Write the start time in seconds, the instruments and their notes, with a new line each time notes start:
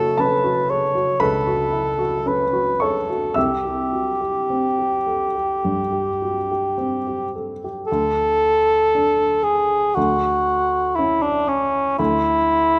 Already playing: grand piano F#1 E4 F#4 C#5 C#6, cor anglais A4
0.17 grand piano C#4 A4 A5, cor anglais B4
0.44 grand piano F#4
0.70 grand piano G#4, cor anglais C#5
0.95 grand piano F#4
1.20 grand piano C#2 B4 B5, cor anglais A4
1.47 grand piano F#4
1.73 grand piano E4
1.99 grand piano F#4
2.26 grand piano C#4, cor anglais B4
2.53 grand piano F#4
2.80 grand piano G#4 C#5 C#6, cor anglais A4
3.10 grand piano F#4
3.34 grand piano C2 E5 E6, cor anglais G4
3.65 grand piano G4
3.93 grand piano F#4
4.21 grand piano G4
4.50 grand piano C4
4.79 grand piano G4
5.07 grand piano A4
5.35 grand piano G4
5.65 grand piano G2
5.92 grand piano G4
6.22 grand piano F#4
6.52 grand piano G4
6.78 grand piano C4
7.07 grand piano G4
7.36 grand piano A4
7.64 grand piano G4
7.87 cor anglais A4
7.92 grand piano D2
8.95 grand piano D4
9.44 cor anglais G#4
9.95 grand piano D2, cor anglais F#4
10.95 grand piano C#4 E4, cor anglais E4
11.22 cor anglais D4
11.48 cor anglais C#4
11.98 grand piano D2, cor anglais E4